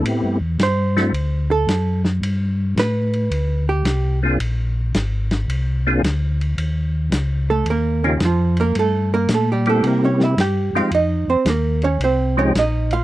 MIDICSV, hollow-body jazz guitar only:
0, 0, Header, 1, 2, 480
1, 0, Start_track
1, 0, Tempo, 542986
1, 49, Time_signature, 4, 2, 24, 8
1, 11526, End_track
2, 0, Start_track
2, 0, Title_t, "Hollow-body jazz guitar"
2, 0, Program_c, 0, 26
2, 557, Note_on_c, 0, 72, 84
2, 1308, Note_off_c, 0, 72, 0
2, 1338, Note_on_c, 0, 69, 89
2, 1781, Note_off_c, 0, 69, 0
2, 2471, Note_on_c, 0, 71, 94
2, 3225, Note_off_c, 0, 71, 0
2, 3262, Note_on_c, 0, 67, 85
2, 3703, Note_off_c, 0, 67, 0
2, 6631, Note_on_c, 0, 69, 80
2, 6640, Note_on_c, 0, 57, 64
2, 6776, Note_off_c, 0, 69, 0
2, 6780, Note_off_c, 0, 57, 0
2, 6808, Note_on_c, 0, 70, 80
2, 6815, Note_on_c, 0, 58, 67
2, 7100, Note_off_c, 0, 70, 0
2, 7103, Note_off_c, 0, 58, 0
2, 7109, Note_on_c, 0, 61, 68
2, 7115, Note_on_c, 0, 49, 53
2, 7255, Note_off_c, 0, 61, 0
2, 7258, Note_off_c, 0, 49, 0
2, 7293, Note_on_c, 0, 53, 61
2, 7294, Note_on_c, 0, 65, 70
2, 7581, Note_off_c, 0, 65, 0
2, 7583, Note_off_c, 0, 53, 0
2, 7601, Note_on_c, 0, 58, 77
2, 7608, Note_on_c, 0, 70, 96
2, 7741, Note_off_c, 0, 58, 0
2, 7743, Note_off_c, 0, 70, 0
2, 7771, Note_on_c, 0, 69, 87
2, 7777, Note_on_c, 0, 57, 64
2, 8062, Note_off_c, 0, 69, 0
2, 8065, Note_off_c, 0, 57, 0
2, 8077, Note_on_c, 0, 70, 99
2, 8084, Note_on_c, 0, 58, 86
2, 8219, Note_off_c, 0, 70, 0
2, 8222, Note_off_c, 0, 58, 0
2, 8257, Note_on_c, 0, 57, 72
2, 8263, Note_on_c, 0, 69, 68
2, 8390, Note_off_c, 0, 57, 0
2, 8391, Note_off_c, 0, 69, 0
2, 8414, Note_on_c, 0, 67, 74
2, 8422, Note_on_c, 0, 55, 62
2, 8548, Note_off_c, 0, 67, 0
2, 8552, Note_off_c, 0, 55, 0
2, 8569, Note_on_c, 0, 69, 79
2, 8573, Note_on_c, 0, 57, 63
2, 8705, Note_off_c, 0, 69, 0
2, 8707, Note_off_c, 0, 57, 0
2, 8723, Note_on_c, 0, 58, 67
2, 8730, Note_on_c, 0, 70, 74
2, 8863, Note_off_c, 0, 58, 0
2, 8864, Note_off_c, 0, 70, 0
2, 8880, Note_on_c, 0, 61, 69
2, 8887, Note_on_c, 0, 73, 69
2, 9021, Note_off_c, 0, 61, 0
2, 9023, Note_off_c, 0, 73, 0
2, 9048, Note_on_c, 0, 76, 83
2, 9056, Note_on_c, 0, 64, 65
2, 9185, Note_off_c, 0, 76, 0
2, 9189, Note_off_c, 0, 64, 0
2, 9197, Note_on_c, 0, 67, 93
2, 9198, Note_on_c, 0, 79, 91
2, 9494, Note_off_c, 0, 79, 0
2, 9495, Note_off_c, 0, 67, 0
2, 9515, Note_on_c, 0, 65, 82
2, 9516, Note_on_c, 0, 77, 96
2, 9658, Note_off_c, 0, 77, 0
2, 9659, Note_off_c, 0, 65, 0
2, 9675, Note_on_c, 0, 63, 79
2, 9676, Note_on_c, 0, 75, 89
2, 9973, Note_off_c, 0, 75, 0
2, 9974, Note_off_c, 0, 63, 0
2, 9986, Note_on_c, 0, 60, 78
2, 9987, Note_on_c, 0, 72, 74
2, 10132, Note_off_c, 0, 72, 0
2, 10134, Note_off_c, 0, 60, 0
2, 10158, Note_on_c, 0, 58, 62
2, 10163, Note_on_c, 0, 70, 68
2, 10456, Note_off_c, 0, 58, 0
2, 10456, Note_off_c, 0, 70, 0
2, 10468, Note_on_c, 0, 73, 98
2, 10473, Note_on_c, 0, 61, 82
2, 10615, Note_off_c, 0, 73, 0
2, 10617, Note_off_c, 0, 61, 0
2, 10642, Note_on_c, 0, 72, 77
2, 10646, Note_on_c, 0, 60, 64
2, 10937, Note_off_c, 0, 72, 0
2, 10940, Note_off_c, 0, 60, 0
2, 10949, Note_on_c, 0, 61, 69
2, 10951, Note_on_c, 0, 73, 88
2, 11095, Note_off_c, 0, 73, 0
2, 11096, Note_off_c, 0, 61, 0
2, 11127, Note_on_c, 0, 75, 92
2, 11134, Note_on_c, 0, 63, 76
2, 11420, Note_off_c, 0, 75, 0
2, 11424, Note_off_c, 0, 63, 0
2, 11429, Note_on_c, 0, 77, 106
2, 11433, Note_on_c, 0, 65, 77
2, 11526, Note_off_c, 0, 65, 0
2, 11526, Note_off_c, 0, 77, 0
2, 11526, End_track
0, 0, End_of_file